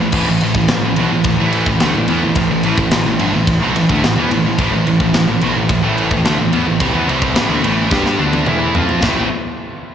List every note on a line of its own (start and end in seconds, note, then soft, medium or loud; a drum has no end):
0.00 0.12 A1 medium
0.00 0.12 A2 medium
0.00 0.12 E3 medium
0.00 9.00 A3 medium
0.00 9.00 E4 medium
0.00 9.00 B4 medium
0.00 9.00 C5 medium
0.12 0.26 A1 medium
0.12 0.26 A2 loud
0.12 0.26 E3 loud
0.12 kick loud
0.12 crash loud
0.27 0.40 A1 medium
0.27 0.40 A2 medium
0.27 0.41 E3 medium
0.41 0.54 A1 medium
0.41 0.54 A2 medium
0.41 0.55 E3 medium
0.41 ride medium
0.55 0.68 A1 medium
0.55 0.69 A2 medium
0.55 0.69 E3 medium
0.55 kick loud
0.68 0.82 A1 medium
0.68 0.83 A2 medium
0.68 0.83 E3 medium
0.68 snare loud
0.68 ride loud
0.83 0.96 A1 medium
0.83 0.97 A2 medium
0.83 0.97 E3 medium
0.96 1.10 B1 loud
0.96 1.10 B2 loud
0.96 1.11 F#3 loud
0.96 ride medium
1.11 1.24 A1 medium
1.11 1.24 A2 medium
1.11 1.25 E3 medium
1.24 1.38 A1 medium
1.24 1.38 A2 medium
1.24 1.38 E3 medium
1.24 kick loud
1.24 ride loud
1.38 1.64 A1 medium
1.38 1.66 A2 loud
1.38 1.66 E3 loud
1.38 1.66 A3 loud
1.52 ride medium
1.66 1.79 A1 medium
1.66 1.80 A2 medium
1.66 1.81 E3 medium
1.66 kick loud
1.80 1.93 D2 loud
1.80 1.94 D3 medium
1.80 1.94 A3 medium
1.80 snare loud
1.80 ride medium
1.94 2.07 A1 medium
1.94 2.07 A2 medium
1.94 2.06 E3 medium
2.08 2.21 E2 medium
2.08 2.21 E3 loud
2.08 2.21 B3 loud
2.08 ride medium
2.23 2.35 A1 medium
2.23 2.34 A2 medium
2.23 2.35 E3 medium
2.35 2.49 A1 medium
2.35 2.48 A2 medium
2.35 2.48 E3 medium
2.35 kick loud
2.35 ride loud
2.49 2.63 A1 medium
2.49 2.62 A2 medium
2.49 2.62 E3 medium
2.63 2.77 A1 loud
2.63 2.76 A2 loud
2.63 2.77 E3 loud
2.63 ride medium
2.77 2.91 A1 medium
2.77 2.91 A2 medium
2.77 2.91 E3 medium
2.77 kick medium
2.91 3.05 A1 medium
2.91 3.04 A2 medium
2.91 3.05 E3 medium
2.91 snare loud
2.91 ride loud
3.06 3.19 A1 medium
3.06 3.19 A2 medium
3.06 3.20 E3 medium
3.19 3.33 G1 loud
3.19 3.32 G2 medium
3.19 3.33 D3 loud
3.19 ride medium
3.34 3.60 A1 medium
3.34 3.56 A2 medium
3.34 3.56 E3 medium
3.47 kick loud
3.47 ride loud
3.62 3.74 B1 loud
3.62 3.74 B2 medium
3.62 3.75 F#3 loud
3.75 3.88 A1 medium
3.75 3.89 A2 medium
3.75 3.89 E3 medium
3.75 ride medium
3.89 4.02 D2 loud
3.89 4.02 D3 medium
3.89 4.03 A3 loud
3.89 kick medium
4.03 4.16 A1 medium
4.03 4.16 A2 medium
4.03 4.16 E3 medium
4.03 snare loud
4.03 ride loud
4.17 4.29 E2 medium
4.17 4.30 E3 medium
4.17 4.30 B3 loud
4.30 4.43 A1 medium
4.30 4.43 A2 medium
4.30 4.43 E3 medium
4.30 ride medium
4.43 4.57 A1 medium
4.43 4.56 A2 medium
4.43 4.57 E3 medium
4.58 4.71 A1 loud
4.58 4.70 A2 medium
4.58 4.70 E3 loud
4.58 kick loud
4.58 ride loud
4.71 4.85 A1 medium
4.71 4.85 A2 medium
4.71 4.85 E3 medium
4.86 4.99 A1 medium
4.86 4.98 A2 medium
4.86 4.98 E3 medium
4.86 ride medium
4.99 5.13 A1 medium
4.99 5.11 A2 medium
4.99 5.12 E3 medium
4.99 kick medium
5.13 5.27 A1 medium
5.13 5.26 A2 medium
5.13 5.26 E3 medium
5.13 snare loud
5.13 ride loud
5.27 5.41 A1 medium
5.27 5.40 A2 medium
5.27 5.41 E3 medium
5.40 5.55 B1 loud
5.40 5.54 B2 medium
5.40 5.54 F#3 loud
5.40 ride medium
5.54 5.69 A1 medium
5.54 5.68 A2 medium
5.54 5.68 E3 medium
5.69 5.82 A1 medium
5.69 5.81 A2 medium
5.69 5.82 E3 medium
5.69 kick loud
5.69 ride loud
5.82 6.09 A1 medium
5.82 6.10 A2 loud
5.82 6.10 E3 loud
5.82 6.10 A3 loud
5.98 ride medium
6.11 6.24 A1 medium
6.11 6.24 A2 medium
6.11 6.25 E3 medium
6.11 kick medium
6.24 6.37 D2 loud
6.24 6.38 D3 medium
6.24 6.38 A3 medium
6.24 snare loud
6.24 ride medium
6.38 6.51 A1 medium
6.38 6.52 A2 medium
6.38 6.51 E3 medium
6.52 6.65 E2 loud
6.52 6.66 E3 loud
6.52 6.66 B3 loud
6.52 ride medium
6.66 6.79 A1 medium
6.66 6.80 A2 medium
6.66 6.81 E3 medium
6.80 6.94 C2 loud
6.80 6.94 C3 loud
6.80 6.94 G3 loud
6.80 kick loud
6.80 ride medium
6.94 7.07 E2 medium
6.94 7.08 E3 loud
6.94 7.08 B3 loud
7.08 7.34 C2 loud
7.08 7.35 C3 medium
7.08 7.36 G3 loud
7.08 7.36 C4 loud
7.08 ride medium
7.22 kick loud
7.36 7.49 A1 loud
7.36 7.49 A2 loud
7.36 7.50 E3 loud
7.36 snare loud
7.36 ride loud
7.50 7.62 D2 loud
7.50 7.63 D3 medium
7.50 7.64 A3 medium
7.63 7.89 A1 loud
7.63 7.91 A2 loud
7.63 7.91 E3 loud
7.63 7.92 A3 loud
7.63 ride medium
7.91 8.17 G2 loud
7.91 8.19 G3 medium
7.91 8.19 D4 loud
7.91 8.19 G4 loud
7.91 kick loud
7.91 snare medium
8.06 snare medium
8.19 8.45 D2 medium
8.19 8.47 D3 loud
8.19 8.47 A3 loud
8.19 8.47 D4 loud
8.33 high tom medium
8.46 8.73 E2 medium
8.46 8.74 E3 medium
8.46 8.75 B3 medium
8.46 8.75 E4 loud
8.46 mid tom medium
8.75 9.01 F2 medium
8.75 9.02 F3 medium
8.75 9.03 C4 loud
8.75 9.03 F4 loud
8.75 floor tom loud
8.89 floor tom medium
9.02 9.29 A1 loud
9.02 9.25 A2 loud
9.02 9.25 E3 loud
9.02 9.26 A3 loud
9.02 9.29 A3 medium
9.02 9.26 C4 loud
9.02 9.29 E4 medium
9.02 9.26 E4 loud
9.02 9.26 A4 loud
9.02 9.29 B4 medium
9.02 9.29 C5 medium
9.02 kick loud
9.02 snare loud
9.02 ride bell medium